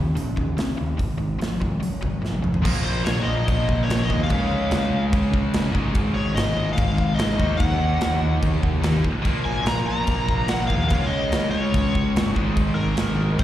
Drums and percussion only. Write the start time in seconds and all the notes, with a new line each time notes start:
0.17 open hi-hat
0.37 kick
0.58 snare, open hi-hat
0.99 kick, open hi-hat
1.41 snare, open hi-hat
1.62 kick
1.83 open hi-hat
2.03 kick
2.25 snare
2.34 high tom
2.44 mid tom
2.54 floor tom
2.65 kick, crash
3.06 snare, crash
3.48 kick, crash
3.69 kick
3.90 snare, crash
4.10 kick
4.30 kick, crash
4.71 snare, crash
5.13 kick, crash
5.33 kick
5.54 snare, crash
5.75 kick
5.95 kick, crash
6.37 snare, crash
6.78 kick, crash
6.98 kick
7.19 snare, crash
7.40 kick
7.60 kick, crash
8.01 snare, crash
8.43 kick, crash
8.63 kick
8.83 snare, crash
9.04 kick
9.25 kick, crash
9.66 snare, crash
10.07 kick, crash
10.29 kick
10.48 snare, crash
10.70 kick
10.90 kick, crash
11.32 snare, crash
11.74 kick, crash
11.95 kick
12.16 snare, crash
12.36 kick
12.57 kick, crash
12.97 snare, crash
13.39 kick, crash